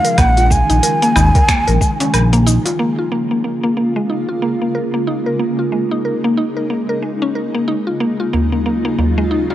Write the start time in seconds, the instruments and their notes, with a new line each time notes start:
Already playing: ambient pad C#3 D#3 F3 G#3, ney F5
0.04 synth pluck A#4, open hi-hat, cabasa
0.18 analog synth bass A#1, synth pluck A#3, ney F#5, kick, open hi-hat, cabasa, low woodblock
0.37 synth pluck F4, open hi-hat, cabasa
0.50 synth pluck G#3, ney G#5, kick, cabasa
0.70 analog synth bass A#1, synth pluck D#4, open hi-hat, darbuka ka, cabasa
0.83 synth pluck A#4, open hi-hat, cabasa
1.02 synth pluck A#3, open hi-hat, cabasa
1.16 analog synth bass G#1, synth pluck D#4, darbuka tek, darbuka dum, cabasa, low woodblock
1.35 synth pluck A#4, kick, open hi-hat, darbuka ka, darbuka tek, cabasa
1.48 synth pluck A#3, finger snap, kick, open hi-hat, cabasa
1.67 analog synth bass A#1, synth pluck A#4, open hi-hat, cabasa
1.81 synth pluck G#3, kick, cabasa
2.00 synth pluck C#4, open hi-hat, darbuka tek, cabasa
2.14 analog synth bass A#1, synth pluck A#4, open hi-hat, cabasa, low woodblock
2.33 synth pluck A#3, open hi-hat, darbuka tek, cabasa
2.46 synth pluck D#4, cabasa
2.66 synth pluck F4, open hi-hat, darbuka tek, cabasa
2.79 ambient pad C#3 G#3 A#3 F4, synth pluck A#3
2.99 synth pluck F4
3.12 synth pluck A#3
3.31 synth pluck A#3
3.44 synth pluck A#3
3.63 synth pluck A#3
3.77 synth pluck A#3
3.96 synth pluck G#3
4.10 synth pluck D#4
4.29 synth pluck F4
4.42 synth pluck A#3
4.62 synth pluck A#3
4.75 synth pluck A#4
4.94 synth pluck A#3
5.07 synth pluck D#4
5.26 synth pluck A#4
5.39 synth pluck A#3, ambient pad D#4
5.59 synth pluck F4
5.72 synth pluck G#3
5.91 synth pluck D#4
6.05 synth pluck A#4
6.24 synth pluck A#3
6.37 synth pluck D#4
6.57 synth pluck A#4
6.70 synth pluck A#3
6.89 synth pluck A#4
7.02 synth pluck G#3
7.22 synth pluck C#4
7.35 synth pluck A#4
7.54 synth pluck A#3
7.68 synth pluck D#4
7.87 synth pluck F4
8.00 ambient pad F#3 F4, synth pluck A#3
8.20 synth pluck F4
8.33 synth pluck A#3, darbuka dum
8.52 synth pluck A#3, darbuka ka
8.66 synth pluck A#3
8.85 synth pluck A#3
8.99 synth pluck A#3, darbuka dum
9.18 synth pluck G#3, darbuka ka
9.31 synth pluck D#4
9.50 synth pluck F4, darbuka tek